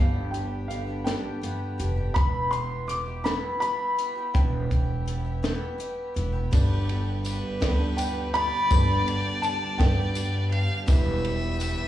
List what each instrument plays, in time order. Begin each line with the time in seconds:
Already playing: upright bass G1, twelve-string acoustic guitar G2, steel-string acoustic guitar D3, upright piano F5
0.00 twelve-string acoustic guitar D3 G3 B3 D4 G4
0.31 twelve-string acoustic guitar G3 B3, upright piano G5, closed hi-hat
0.36 twelve-string acoustic guitar D4 G4
0.68 steel-string acoustic guitar D3, twelve-string acoustic guitar G3 B3, upright piano F5, closed hi-hat
0.72 twelve-string acoustic guitar D4 G4
0.87 twelve-string acoustic guitar G3 B3 D4 G4
1.04 twelve-string acoustic guitar G2 D3 G3 B3 D4 G4, upright piano G5, snare, closed hi-hat
1.41 steel-string acoustic guitar G2, twelve-string acoustic guitar G3 B3 D4 G4, closed hi-hat
1.78 upright bass F1, twelve-string acoustic guitar G3 B3 D4 G4, closed hi-hat
1.96 twelve-string acoustic guitar G3 B3 D4 G4
2.14 upright bass E1, twelve-string acoustic guitar E3 G3 B3 E4 G4, upright piano B5, kick, closed hi-hat
2.51 twelve-string acoustic guitar G3 B3 E4 G4, upright piano C6, closed hi-hat
2.87 twelve-string acoustic guitar G3 B3 E4 G4, upright piano D6, closed hi-hat
3.06 twelve-string acoustic guitar B3 E4 G4
3.24 twelve-string acoustic guitar E3 G3 B3 E4 G4, upright piano B5, snare, closed hi-hat
3.60 twelve-string acoustic guitar G3 B3 E4 G4, upright piano B5, closed hi-hat
3.97 twelve-string acoustic guitar G3 B3 E4 G4, closed hi-hat
4.15 twelve-string acoustic guitar B3 E4 G4
4.34 upright bass E1, twelve-string acoustic guitar E3 G3 B3 E4 G4, upright piano G5, kick, closed hi-hat
4.70 twelve-string acoustic guitar G3 B3 E4 G4, kick, closed hi-hat
5.06 twelve-string acoustic guitar G3 B3 E4 G4, closed hi-hat
5.24 twelve-string acoustic guitar B3 E4 G4
5.43 twelve-string acoustic guitar E3 G3 B3 E4 G4, snare, closed hi-hat
5.78 twelve-string acoustic guitar G3 B3 E4 G4, closed hi-hat
6.14 upright bass E1, twelve-string acoustic guitar G3 B3 E4 G4, closed hi-hat
6.32 twelve-string acoustic guitar B3 E4 G4
6.51 upright bass G1, felt piano G1 G2 G3 B3 D4 B4 D5, twelve-string acoustic guitar G2 D3 G3 B3 D4 G4, tonewheel organ D3 G3 B3 G4, fiddle B4, kick, ride, tambourine
6.87 twelve-string acoustic guitar G3 B3 D4 G4, ride
7.23 twelve-string acoustic guitar G3 B3 D4 G4, fiddle B4, ride, tambourine
7.60 upright bass D2, twelve-string acoustic guitar G2 D3 G3 B3 D4 G4, felt piano G3 B3 D4 B4 D5, kick, snare, ride, tambourine
7.97 twelve-string acoustic guitar G3 B3 D4 G4, upright piano G5, ride, tambourine
8.33 twelve-string acoustic guitar G3 B3 D4 G4, fiddle D5, upright piano B5, ride
8.70 upright bass G1, felt piano G1 G2 G3 B3 D4 B4 D5, twelve-string acoustic guitar G2 D3 G3 B3 D4 G4, kick, ride, tambourine
9.06 twelve-string acoustic guitar G3 B3 D4 G4, ride
9.42 twelve-string acoustic guitar G3 B3 D4 G4, upright piano A5, ride, tambourine
9.78 upright bass G2, twelve-string acoustic guitar G2 D3 G3 B3 D4 G4, felt piano G3 B3 D4 B4 D5, upright piano G5, kick, snare, ride, tambourine
10.14 twelve-string acoustic guitar G3 B3 D4 G4, ride, tambourine
10.50 twelve-string acoustic guitar G3 B3 D4 G4, fiddle F5, ride
10.87 upright bass E1, felt piano E2 E3 G3 B3 E4 B4 E5, twelve-string acoustic guitar E3 G3 B3 E4 G4, tonewheel organ E3 B3, fiddle E5, kick, ride, tambourine
11.22 twelve-string acoustic guitar B3 E4 G4, ride
11.58 twelve-string acoustic guitar G3 B3 E4 G4, ride, tambourine